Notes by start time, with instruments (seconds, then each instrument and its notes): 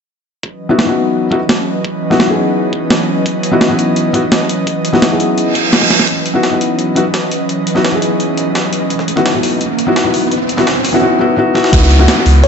0.43 analog synth pad E3 F#3 C#4 B4 D#5, kick
0.69 felt piano B3 D#4 E4 F#4
0.79 snare
0.86 felt piano B3 D#4 E4 F#4
1.31 felt piano B3 D#4 E4 F#4, kick
1.49 snare
1.85 kick
2.10 felt piano B3 D#4 E4 F#4, snare
2.20 snare
2.27 felt piano B3 D#4 E4 G#4
2.73 kick
2.90 snare
3.26 kick, closed hi-hat
3.43 closed hi-hat
3.51 felt piano B3 D#4 E4 F#4
3.61 snare, closed hi-hat
3.68 felt piano B3 D#4 E4 F#4
3.79 closed hi-hat
3.96 closed hi-hat
4.13 felt piano B3 D#4 E4 F#4, kick, closed hi-hat
4.32 snare, closed hi-hat
4.49 closed hi-hat
4.67 kick, closed hi-hat
4.85 closed hi-hat
4.93 felt piano B3 D#4 E4 F#4, snare
5.02 snare, closed hi-hat
5.10 felt piano B3 D#4 E4 G#4
5.20 closed hi-hat
5.38 closed hi-hat, reverse cymbal
5.55 kick, closed hi-hat
5.73 snare, closed hi-hat
5.82 snare
5.90 snare, closed hi-hat
5.99 snare
6.08 analog synth pad E3 F#3 C#4 B4 D#5, closed hi-hat, riser
6.26 closed hi-hat
6.34 felt piano B3 D#4 E4 F#4
6.43 snare, closed hi-hat
6.51 felt piano B3 D#4 E4 F#4
6.61 closed hi-hat
6.79 closed hi-hat
6.95 felt piano B3 D#4 E4 F#4, closed hi-hat
7.14 snare, closed hi-hat
7.32 closed hi-hat
7.49 closed hi-hat
7.67 closed hi-hat
7.75 felt piano B3 D#4 E4 F#4, snare
7.85 snare, closed hi-hat
7.92 felt piano B3 D#4 E4 G#4
8.02 closed hi-hat
8.20 closed hi-hat
8.37 closed hi-hat
8.55 snare, closed hi-hat
8.73 closed hi-hat
8.90 closed hi-hat
8.99 snare
9.08 closed hi-hat
9.16 felt piano B3 D#4 E4 F#4, snare
9.26 snare, closed hi-hat
9.33 felt piano B3 D#4 E4 F#4
9.43 open hi-hat
9.61 closed hi-hat
9.79 closed hi-hat
9.87 felt piano B3 D#4 E4 F#4
9.96 snare, closed hi-hat
10.04 felt piano B3 D#4 E4 F#4
10.14 open hi-hat
10.31 closed hi-hat
10.49 closed hi-hat
10.57 felt piano B3 D#4 E4 F#4, snare
10.67 snare, closed hi-hat
10.85 open hi-hat
10.93 felt piano B3 D#4 E4 F#4
11.02 felt piano B3 D#4 E4 F#4
11.19 felt piano B3 D#4 E4 F#4
11.37 felt piano B3 D#4 E4 F#4
11.54 felt piano B3 D#4 E4 F#4, snare
11.64 snare
11.72 sub bass C#2, analog synth pad E3 F#4 B4 D#5, felt piano B3 D#4 E4 F#4, kick, closed hi-hat, crash, downlifter
11.82 snare
11.91 closed hi-hat
11.99 felt piano B3 D#4 E4 F#4, snare
12.08 snare, closed hi-hat
12.16 felt piano B3 D#4 E4 F#4
12.26 sub bass C#2, open hi-hat
12.44 kalimba C#5, closed hi-hat